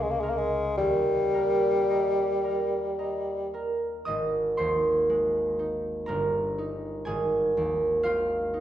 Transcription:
Already playing: C#2
0.03 G#3
0.11 A#3
0.20 G#3 A#4 A#5
0.30 A#3
0.38 G#3
0.78 D#2 G3
1.34 A#4 A#5
1.90 D#5 A#5
2.44 A#4 A#5
2.99 D#5 A#5
3.54 A#4 A#5
4.05 G#1 D#5 D#6
4.57 D#2 C5 C6
5.09 G#3
5.59 D#4
6.06 G1 A#4 A#5
6.58 D#4
7.05 G#1 G#4 G#5
7.57 D#2
8.03 C4 F4 F5
8.54 D#4

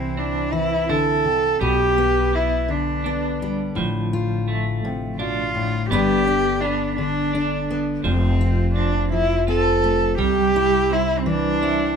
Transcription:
Already playing: C2 C3 D3 E3 G3 C4 E4
0.17 C4 D4
0.53 E3 E4
0.89 D3 E4 A4
1.24 C3
1.61 B1 B2 B3 G4
1.98 B3
2.33 B3 E4
2.68 D3 D4
3.04 B3 D4
3.42 G3
3.75 A1 A2 F3
4.13 F4
4.48 A3
4.85 C3
5.18 B2 D4 F4
5.55 A2
5.90 G1 G2 D3 B3 D4 G4
6.27 D4
6.61 B3 D4
6.96 D3 D4
7.33 D4
7.71 B3
8.03 F1 F2 F3 C4
8.41 F4
8.75 C4 D4
9.12 F3 E4
9.47 C4 F4 A4
9.84 A3
10.18 C2 C3 G3 G4
10.56 E4
10.90 C4 E4
11.19 C4
11.26 E3 D4
11.62 C4 E4

